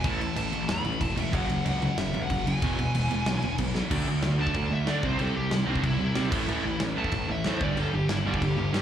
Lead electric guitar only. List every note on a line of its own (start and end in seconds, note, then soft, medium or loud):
0.05 0.36 A5 medium
0.37 0.67 A5 medium
0.69 1.01 B5 loud
1.02 1.18 A5 loud
1.18 1.33 E5 loud
1.35 1.65 F#5 loud
1.66 1.98 F#5 medium
1.99 2.21 E5 loud
2.23 2.45 F#5 loud
2.46 3.55 G#5 medium
4.41 4.72 A5 medium
4.73 4.88 E5 medium
4.90 5.05 D5 medium
5.05 5.20 C5 medium
5.21 5.36 A4 medium
5.36 5.53 G4 medium
5.53 5.69 E4 medium
5.69 5.86 D4 medium
5.86 6.79 E4 medium
6.98 7.29 A5 loud
7.31 7.46 E5 medium
7.47 7.62 C5 loud
7.63 7.78 D5 medium
7.79 7.95 A4 medium
7.95 8.10 G4 medium
8.11 8.26 E4 medium
8.27 8.42 D4 medium
8.43 8.82 G4 loud